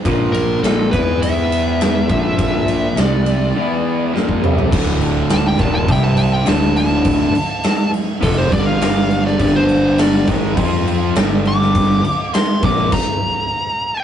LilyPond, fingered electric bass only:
\new Staff \with { instrumentName = "Fingered electric bass" } { \clef bass \time 4/4 \key d \minor \tempo 4 = 103 bes,,4 bes,,8 e,2 bes,,8~ | bes,,4 c,4 r2 | d,,4. ees,,8 c,4 d,,4~ | d,,8 r4. f,,8 g,,4. |
g,,4. gis,,8 f,4 g,,4~ | g,,8 r4 bes,,8 r2 | }